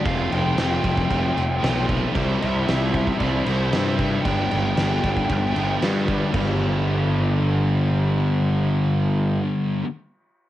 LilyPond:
<<
  \new Staff \with { instrumentName = "Lead electric guitar" } { \time 4/4 \key g \mixolydian \tempo 4 = 114 f''8 g''2. r8 | r8 e''4. d''8 c''4 e''8 | g''2. r4 | r1 |
r1 | }
  \new Staff \with { instrumentName = "Distorted electric guitar" } { \time 4/4 \key g \mixolydian <f, c f a c'>8 <f a c'>8 <c f a c'>8 <f, c f a c'>8 <c f a c'>8 <f a c'>8 <f, c f a c'>8 <f a c'>8 | <c g c' e'>8 <g c' e'>8 <c g c' e'>8 <c g c' e'>8 <c g c' e'>8 <g c' e'>8 <c g c' e'>8 <g c' e'>8 | <g, d g b d'>8 <g b d'>8 <d g b d'>8 <g, d g b d'>8 <d g b d'>8 <g b d'>8 <g, d g b d'>8 <g b d'>8 | <g, d g b d'>1~ |
<g, d g b d'>1 | }
  \new Staff \with { instrumentName = "Distorted electric guitar" } { \time 4/4 \key g \mixolydian <f, c f a c' f'>4 <f a c' f'>4 <f, c f a c' f'>8 <f a c' f'>8 <f a c' f'>8 <f a c' f'>8 | <c g c' e'>4 <c g c' e'>4 <c g c' e'>8 <g c' e'>8 <c g c' e'>8 <g c' e'>8 | <g, d g b d'>4 <d g b d'>4 <g, d g b d'>8 <g b d'>8 <d g b d'>8 <g b d'>8 | <g, d g>1~ |
<g, d g>1 | }
  \new Staff \with { instrumentName = "Picked electric bass" } { \clef bass \time 4/4 \key g \mixolydian f,,8 f,,8 f,,8 f,,8 f,,8 f,,8 b,,4 | c,8 c,8 c,4 c,8 c,8 g,4 | g,,8 g,,8 g,,8 g,,8 g,,8 g,,8 g,4 | g,,1~ |
g,,1 | }
  \new DrumStaff \with { instrumentName = "Drums" } \drummode { \time 4/4 <cymc bd>8 cymc8 <cymc sn>8 <cymc bd>16 bd16 <cymc bd>8 cymc8 <cymc sn>8 <cymc bd>8 | <cymc bd>8 cymc8 <cymc sn>8 <cymc bd>16 bd16 <cymc bd>8 cymc8 <cymc sn>8 <cymc bd>8 | <cymc bd>8 cymc8 <cymc sn>8 <cymc bd>16 bd16 <cymc bd>8 cymc8 <cymc sn>8 <cymc bd>8 | <cymc bd>4 r4 r4 r4 |
r4 r4 r4 r4 | }
>>